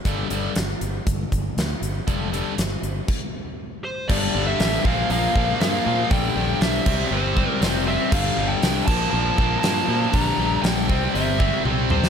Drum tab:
CC |----------------|--------x-------|x---------------|------x---------|
HH |x-x-x-x-x-x-x-x-|x-x-x-x---------|----o---o---o---|o---o-------o---|
SD |----o-------o---|----o-----------|----o-------o---|----o-------o---|
T1 |----------------|----------------|----------------|----------------|
T2 |----------------|----------------|----------------|----------------|
BD |o-------o-o-----|o-------o-------|o-----o---o-----|o-----o---o-----|

CC |x-----x---------|----------------|
HH |----o-------o---|o---o---o-------|
SD |----o-------o---|----o----------o|
T1 |----------------|------------o---|
T2 |----------------|--------------o-|
BD |o-----o---o-----|o-----o---o-----|